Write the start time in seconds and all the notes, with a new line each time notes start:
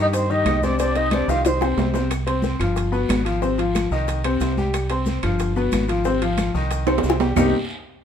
Already playing: G2 D#3 D#4 G4
0.02 D#4 D#5
0.13 C4 C5, high bongo, high conga, high timbale, long guiro, maracas
0.29 D#3 D#4 G4 D#5, high conga, maracas
0.45 C2, high bongo, low bongo, high conga, high timbale, low timbale, short guiro, claves, maracas
0.62 C3 C4 D4 C5 D5, high conga, short guiro, maracas
0.79 C3 C4 D4 C5 D5, high bongo, high conga, high timbale, long guiro, maracas
0.95 D#4 D#5, high bongo, high conga, high timbale, maracas
1.11 C3 C4 D4 C5 D5, high bongo, high conga, high timbale, short guiro, claves, maracas
1.28 C2 D#3 D#4 F4 G4 F5, low bongo, high conga, short guiro, maracas
1.45 C4 C5, low bongo, high conga, high timbale, long guiro, maracas
1.61 C3 C4 C5, low bongo, high conga, high timbale, claves, maracas
1.77 C2, low bongo, high conga, low timbale, short guiro, maracas
1.94 C3 C4 C5, low bongo, high conga, low timbale, short guiro, maracas
2.10 high bongo, high conga, high timbale, long guiro, claves, maracas
2.26 C4 C5 C6, high conga, high timbale, maracas
2.42 high bongo, high conga, short guiro, maracas
2.59 G1 F3 F4 F5, high bongo, high conga, low conga, high timbale, short guiro, claves, maracas
2.76 high bongo, high conga, high timbale, long guiro, maracas
2.92 B2 B3 B4, high bongo, high conga, maracas
3.09 G#1, high bongo, low bongo, high conga, high timbale, low timbale, short guiro, claves, maracas
3.25 F3 F4 F5, high bongo, high conga, high timbale, short guiro, maracas
3.42 C3 C4 C5, high bongo, high conga, long guiro, maracas
3.58 F3 F4 F5, high conga, high timbale, maracas
3.75 high bongo, high conga, high timbale, short guiro, claves, maracas
3.91 C2 D#3 D#4 D#5, high bongo, high conga, short guiro, maracas
4.08 high bongo, high conga, high timbale, long guiro, maracas
4.24 C3 C4 C5, high bongo, high conga, high timbale, claves, maracas
4.40 C2, high bongo, low bongo, high conga, high timbale, short guiro, maracas
4.57 G3 G4 G5, high bongo, high conga, short guiro, maracas
4.74 high bongo, high timbale, long guiro, claves, maracas
4.90 C4 C5 C6, high conga, high timbale, maracas
5.06 high bongo, high conga, short guiro, maracas
5.23 G1 F3 F4 F5, high bongo, high conga, low conga, high timbale, short guiro, claves, maracas
5.39 high bongo, high conga, high timbale, long guiro, maracas
5.56 B2 B3 B4, high bongo, high conga, maracas
5.72 G#1, high bongo, low bongo, high conga, high timbale, short guiro, claves, maracas
5.88 F3 F4 F5, high bongo, high conga, high timbale, short guiro, maracas
6.05 C3 C4 C5, high bongo, high conga, long guiro, maracas
6.21 F3 F4 F5, high conga, high timbale, maracas
6.38 high bongo, high conga, high timbale, short guiro, claves, maracas
6.54 C2 D#3 D#4 D#5, high bongo, high conga, short guiro, maracas
6.70 high bongo, high conga, high timbale, long guiro, maracas
6.87 C3 C4 C5, high bongo, high conga, high timbale, claves, maracas
6.98 high bongo, low timbale
7.04 C2, high conga, short guiro, maracas
7.10 low bongo
7.20 G3 G4 G5, low bongo, low timbale, short guiro, maracas
7.36 C2 C3 G3 A#3 C4 D#4 G4, low bongo, low conga, low timbale, long guiro, claves, maracas